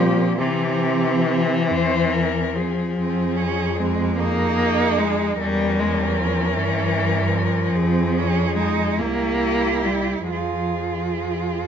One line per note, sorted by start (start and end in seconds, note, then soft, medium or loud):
0.00 0.41 A#2 medium
0.00 0.38 F3 medium
0.00 0.40 C4 medium
0.00 0.40 G4 medium
0.39 1.72 C3 medium
0.39 2.56 E3 loud
0.39 2.73 C4 medium
0.39 1.60 G4 medium
1.69 2.77 E2 soft
1.69 2.14 C5 medium
2.13 2.57 A#4 medium
2.55 3.81 F3 medium
2.55 2.94 G#4 soft
2.95 5.36 F2 medium
2.95 3.38 C4 medium
2.95 4.14 G#4 medium
3.36 3.79 C#4 medium
3.77 4.18 G#3 medium
3.77 4.20 C4 medium
4.19 5.01 A#3 medium
4.19 5.42 D#4 medium
4.19 5.37 G#4 medium
4.99 5.38 G#3 medium
5.39 6.58 E2 medium
5.39 5.81 G3 loud
5.39 7.78 C#4 medium
5.39 7.77 A#4 medium
5.80 6.00 G#3 medium
5.99 6.19 G3 medium
6.18 6.54 F3 medium
6.55 7.75 G2 medium
6.55 7.35 E3 medium
7.34 8.57 F3 medium
7.75 9.02 F2 medium
7.75 8.20 C4 medium
7.75 9.02 G#4 medium
8.18 8.57 C#4 medium
8.55 9.00 G#3 medium
8.55 9.01 D#4 medium
8.99 10.30 C2 medium
8.99 9.87 A#3 medium
8.99 10.32 E4 medium
8.99 10.32 G4 medium
9.85 10.30 G3 medium
10.30 11.67 F2 soft
10.30 11.67 F3 medium
10.30 11.67 F4 soft
10.30 11.67 G#4 soft